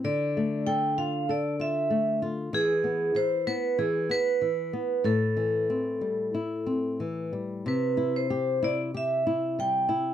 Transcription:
<<
  \new Staff \with { instrumentName = "Vibraphone" } { \time 4/4 \key a \minor \tempo 4 = 95 d''4 g''8 f''8 d''8 e''4 r8 | gis'4 c''8 b'8 gis'8 b'4. | a'2. r4 | \key c \major b'8. c''8. d''8 e''4 g''4 | }
  \new Staff \with { instrumentName = "Nylon-string guitar" } { \time 4/4 \key a \minor d8 a8 a'8 f'8 a'8 f'8 a8 f'8 | e8 b8 e8 b8 e8 b8 e8 b8 | a,8 e8 c'8 g8 e'8 c'8 e8 g8 | \key c \major c8 e'8 g'8 e'8 g'8 e'8 g8 e'8 | }
>>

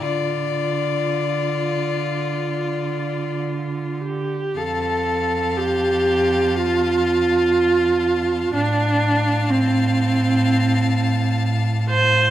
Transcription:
<<
  \new Staff \with { instrumentName = "Violin" } { \time 4/4 \key d \minor \tempo 4 = 61 d''2. r4 | \key f \major a''1 | a''1 | }
  \new Staff \with { instrumentName = "Violin" } { \time 4/4 \key d \minor f'2.~ f'8 r8 | \key f \major f''1 | f''1 | }
  \new Staff \with { instrumentName = "Viola" } { \time 4/4 \key d \minor f'2.~ f'8 g'8 | \key f \major a'4 g'4 f'2 | d'4 c'2 r8 c''8 | }
  \new Staff \with { instrumentName = "Cello" } { \clef bass \time 4/4 \key d \minor d1 | \key f \major f,1 | a,1 | }
>>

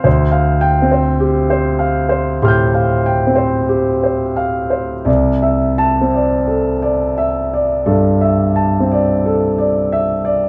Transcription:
<<
  \new Staff \with { instrumentName = "Grand piano" } { \time 4/4 \key c \major \tempo 4 = 45 << { r8 g''8 r4 <c''' f''' g'''>2 | r8 a''8 r2. | } \\ { c''16 f''8 c''16 g'16 c''16 f''16 c''16 g'16 f''16 g''16 c''16 g'16 c''16 f''16 c''16 | d''16 e''8 d''16 a'16 d''16 e''16 d''16 a'16 e''16 a''16 d''16 a'16 d''16 e''16 d''16 | } >> }
  \new Staff \with { instrumentName = "Grand piano" } { \clef bass \time 4/4 \key c \major \tuplet 3/2 { d,4 c'8 } r4 \tuplet 3/2 { a,4 c'8 } r4 | \tuplet 3/2 { c,4 c'8 } r4 \tuplet 3/2 { g,4 c'8 } r4 | }
>>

